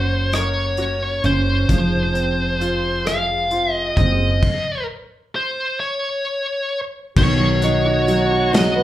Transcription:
0.00 1.20 F#1 loud
0.00 1.64 F#3 medium
0.00 0.31 A#3 medium
0.00 0.78 C#4 soft
0.00 1.20 C#4 soft
0.00 0.77 F#4 soft
0.00 1.69 F#4 medium
0.00 0.35 C5 medium
0.32 1.23 A#3 medium
0.32 1.66 A#4 soft
0.32 1.25 C#5 medium
0.32 cross-stick medium
0.32 closed hi-hat medium
0.77 2.15 C#4 medium
0.77 1.67 F#4 soft
0.77 closed hi-hat soft
1.24 1.67 F#1 medium
1.24 1.69 A#3 medium
1.24 1.68 C#4 soft
1.24 3.13 C5 medium
1.24 closed hi-hat soft
1.68 3.94 F1 medium
1.68 4.39 F3 medium
1.68 3.06 G#3 medium
1.68 2.60 F4 medium
1.68 kick loud
1.68 closed hi-hat medium
2.14 3.93 C4 soft
2.14 3.51 C4 soft
2.14 closed hi-hat soft
2.61 3.50 F4 soft
2.61 4.52 F4 medium
2.61 closed hi-hat soft
3.05 3.96 G#3 medium
3.05 4.39 G#4 soft
3.05 3.74 F5 medium
3.05 cross-stick medium
3.05 closed hi-hat medium
3.51 4.52 C4 soft
3.51 4.40 F4 medium
3.51 closed hi-hat soft
3.74 3.97 D#5 medium
3.97 4.40 F#1 medium
3.97 4.52 G#3 soft
3.97 4.41 C4 medium
3.97 4.85 D#5 medium
3.97 kick medium
3.97 closed hi-hat soft
4.43 kick loud
4.43 crash medium
5.36 5.77 C5 medium
5.80 6.79 C#5 medium
7.16 8.83 B1 loud
7.16 8.83 B2 medium
7.16 8.83 D#3 medium
7.16 8.83 F#4 loud
7.16 8.06 F#4 medium
7.16 8.50 C#5 medium
7.16 kick loud
7.16 crash loud
7.39 8.06 F#3 soft
7.62 8.52 B3 medium
7.62 8.83 D#4 medium
7.62 closed hi-hat medium
7.86 8.29 F#4 medium
8.07 8.52 F#3 medium
8.07 8.83 F#4 medium
8.07 closed hi-hat medium
8.31 8.83 F#4 soft
8.53 8.83 F#3 medium
8.53 8.83 B3 medium
8.53 8.83 D#5 medium
8.53 snare loud
8.53 closed hi-hat loud
8.76 8.83 B4 medium

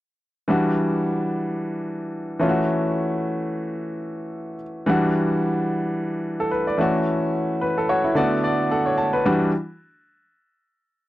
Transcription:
0.48 2.36 E3 medium
0.48 2.37 G3 medium
0.48 2.37 D4 medium
0.48 2.38 F#4 medium
2.39 4.55 E3 medium
2.39 4.56 A3 medium
2.39 4.56 C#4 medium
2.39 2.49 F4 medium
2.49 4.60 F#4 medium
4.86 6.74 E3 medium
4.86 6.75 G3 medium
4.86 6.76 D4 medium
4.86 6.76 F#4 medium
6.40 6.51 A4 medium
6.51 6.66 B4 medium
6.67 6.93 D5 medium
6.78 8.12 E3 medium
6.78 8.13 A3 medium
6.78 8.13 C#4 medium
6.78 7.60 F#4 medium
7.61 7.76 B4 medium
7.78 7.88 A4 medium
7.89 8.03 F#4 medium
7.89 8.14 C#5 medium
8.04 8.30 E4 medium
8.15 9.23 D3 medium
8.15 9.23 A3 medium
8.15 9.24 B3 medium
8.15 9.24 F#4 medium
8.15 8.42 D5 medium
8.44 8.69 D5 medium
8.71 8.86 A4 medium
8.71 8.96 F#5 medium
8.86 9.12 C#5 medium
8.97 9.23 A5 medium
9.13 9.39 B4 medium
9.25 9.51 E3 medium
9.25 9.51 G3 medium
9.25 9.51 D4 medium
9.25 9.51 F#4 medium

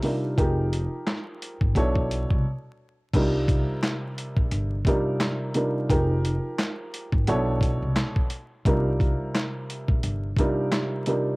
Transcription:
0.03 0.35 C3 medium
0.03 0.35 G3 medium
0.03 0.36 D4 medium
0.03 0.36 D#4 medium
0.03 0.36 F4 medium
0.03 0.36 A#4 medium
0.03 open hi-hat medium
0.37 0.85 F1 loud
0.37 1.75 F3 medium
0.37 1.76 D#4 medium
0.37 1.76 G4 medium
0.37 1.76 G#4 medium
0.37 1.76 A#4 loud
0.37 kick loud
0.37 closed hi-hat medium
0.73 closed hi-hat medium
1.07 snare loud
1.07 clap medium
1.07 closed hi-hat loud
1.42 closed hi-hat medium
1.61 1.74 G#1 medium
1.61 kick medium
1.75 2.23 B1 loud
1.75 2.45 B2 medium
1.75 2.45 F#3 medium
1.75 2.45 D4 medium
1.75 2.45 E4 medium
1.75 2.45 A4 medium
1.75 2.46 C#5 loud
1.75 kick medium
1.75 closed hi-hat medium
1.95 kick medium
2.11 closed hi-hat medium
2.30 2.43 C2 medium
2.30 kick medium
3.14 3.61 C2 loud
3.14 4.75 C3 medium
3.14 4.75 G3 medium
3.14 4.75 D4 medium
3.14 4.75 D#4 medium
3.14 4.75 F4 medium
3.14 4.76 A#4 loud
3.14 kick loud
3.14 closed hi-hat medium
3.14 crash loud
3.48 kick loud
3.48 closed hi-hat medium
3.83 snare loud
3.83 clap medium
3.83 closed hi-hat loud
4.18 closed hi-hat medium
4.37 4.50 A#1 medium
4.37 kick medium
4.51 4.82 G1 medium
4.51 closed hi-hat medium
4.85 5.51 C3 medium
4.85 5.51 G3 medium
4.85 5.51 D4 medium
4.85 5.51 D#4 medium
4.85 5.51 F4 medium
4.85 5.52 A#4 loud
4.85 kick loud
4.85 closed hi-hat medium
5.20 snare loud
5.20 clap medium
5.20 closed hi-hat loud
5.54 5.87 C3 medium
5.54 5.87 G3 medium
5.54 5.87 D4 medium
5.54 5.87 D#4 medium
5.54 5.88 F4 medium
5.54 5.88 A#4 medium
5.54 closed hi-hat medium
5.89 6.37 F1 loud
5.89 7.27 F3 medium
5.89 7.27 D#4 medium
5.89 7.28 G4 medium
5.89 7.28 G#4 medium
5.89 7.28 A#4 loud
5.89 kick loud
5.89 closed hi-hat medium
6.25 closed hi-hat medium
6.59 snare loud
6.59 clap medium
6.59 closed hi-hat loud
6.94 closed hi-hat medium
7.12 7.25 G#1 medium
7.12 kick medium
7.27 7.75 B1 loud
7.27 8.24 B2 medium
7.27 8.24 F#3 medium
7.27 8.24 D4 medium
7.27 8.24 E4 medium
7.27 8.25 A4 medium
7.27 8.25 C#5 loud
7.27 closed hi-hat medium
7.61 kick loud
7.61 closed hi-hat medium
7.82 7.95 C2 medium
7.96 snare loud
7.96 clap medium
7.96 closed hi-hat loud
8.16 kick loud
8.30 closed hi-hat medium
8.65 9.13 C2 loud
8.65 10.26 C3 loud
8.65 10.27 G3 medium
8.65 10.27 D4 medium
8.65 10.27 D#4 medium
8.65 10.27 F4 medium
8.65 10.27 A#4 loud
8.65 kick loud
8.65 closed hi-hat medium
9.00 kick loud
9.00 closed hi-hat medium
9.35 snare loud
9.35 clap medium
9.35 closed hi-hat medium
9.70 closed hi-hat medium
9.88 10.01 A#1 medium
9.88 kick medium
10.03 10.34 G1 loud
10.03 closed hi-hat medium
10.37 11.02 C3 medium
10.37 11.03 G3 medium
10.37 11.03 D4 medium
10.37 11.03 D#4 medium
10.37 11.03 F4 medium
10.37 11.03 A#4 loud
10.37 kick loud
10.37 closed hi-hat medium
10.72 snare loud
10.72 clap medium
10.72 closed hi-hat loud
11.06 11.36 C3 medium
11.06 11.36 G3 medium
11.06 11.36 D4 medium
11.06 11.36 D#4 medium
11.06 11.36 F4 medium
11.06 11.36 A#4 medium
11.06 closed hi-hat medium

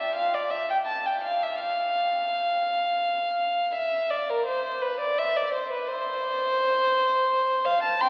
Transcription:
0.00 0.15 E5 medium
0.15 0.33 F5 medium
0.34 0.52 D5 medium
0.51 0.69 E5 medium
0.70 0.77 G5 medium
0.86 1.04 A5 medium
1.06 1.24 G5 medium
1.24 1.42 F5 medium
1.43 1.61 E5 medium
1.60 3.71 F5 medium
3.74 4.10 E5 medium
4.10 4.28 D5 medium
4.30 4.47 A#4 medium
4.45 4.81 C5 medium
4.81 5.00 B4 medium
5.00 5.18 D5 medium
5.18 5.36 E5 medium
5.36 5.54 D5 medium
5.54 5.71 C5 medium
5.72 5.89 B4 medium
5.88 7.65 C5 medium
7.65 7.83 F5 medium
7.82 8.00 A5 medium
8.00 8.09 G5 medium
8.00 8.09 C6 medium

